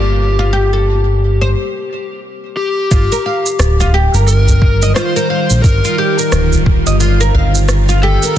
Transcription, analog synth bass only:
Already playing: G1
2.91 G1
3.59 D1
4.14 G1
5.50 A#1
5.64 G1
6.32 D1
6.87 G1
7.35 G1

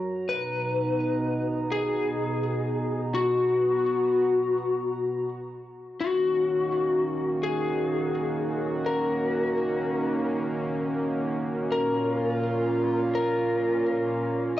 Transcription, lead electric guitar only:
Already playing: A#4
0.29 B4
1.72 G#4
3.15 F#4
6.01 F#4
7.43 G#4
8.86 A#4
11.72 A#4
13.15 A#4

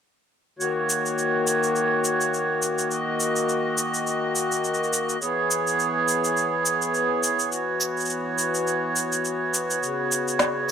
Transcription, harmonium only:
0.59 D#3 A#3 F#4 C#5
2.90 D#5
5.21 E3 B3 G#4 C#5
7.51 F#4
9.82 C#3

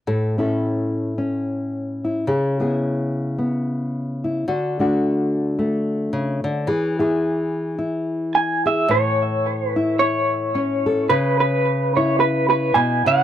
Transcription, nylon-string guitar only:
0.07 A2 A4
0.38 C#4 E4 A4
1.18 C#4
2.04 E4
2.27 C#3 G#4
2.60 B3 E4 G#4
3.38 B3
4.24 E4
4.48 D3 F#4
4.79 A3 D4 F#4
5.59 A3
6.13 C#3
6.44 D3
6.67 E3 G#4
6.99 E4 G#4
7.79 E4
8.66 G#4
8.88 A2
9.76 E4
10.55 C#4
10.86 A4
11.10 C#3
11.97 E4
12.75 B2
13.06 C#3

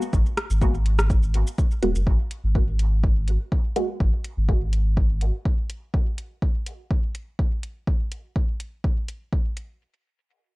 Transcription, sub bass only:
0.13 G#1
0.50 G#1
1.83 D#1
1.96 F#1
2.07 G#1
2.44 G#1
4.00 G#1
4.37 G#1

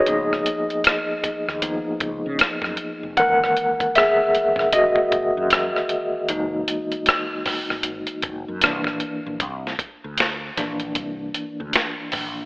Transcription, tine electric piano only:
Already playing: G#4 D#5
0.06 F3 A#3 B3 D#4
1.62 F3 A#3 B3 D#4
3.18 D#3 E3 G#3 A#3 A#4 F#5
3.96 G#4 E5
4.73 F#4 D#5
6.29 E3 G#3 A#3 D#4
8.62 E3 A#3 D4
10.57 E3 A#3 D4

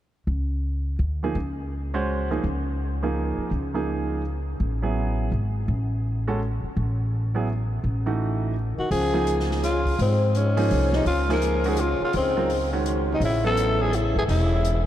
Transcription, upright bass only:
0.27 C#2
0.99 D2
1.35 C#2
2.44 C#2
3.38 muted upright bass stroke
3.51 C#2
4.60 A1
5.32 G#1
5.68 A1
6.63 muted upright bass stroke
6.76 A1
7.84 A1
8.78 muted upright bass stroke
8.91 C#2
9.99 G#2
10.71 C2
11.06 C#2
12.01 muted upright bass stroke
12.14 C#2
13.20 A1
14.15 G#1
14.28 E1

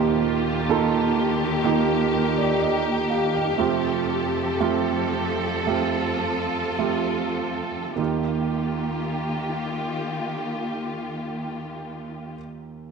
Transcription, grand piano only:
Already playing: D#2 A#2 A#3 D#4 F4 G4
0.69 A#3 D#4 F4 A4
1.64 A#3 D#4 F4 G4
2.13 A#4
2.37 D5
2.61 D#5
3.10 F5
3.35 G5
3.58 F2 C3 A3 C4 F4 G4
4.61 A3 C4 F4 G4
5.67 A3 C4 F4 G4
6.79 A3 C4 F4 G4
7.96 D#2 A#3 D#4 F4
8.00 G4

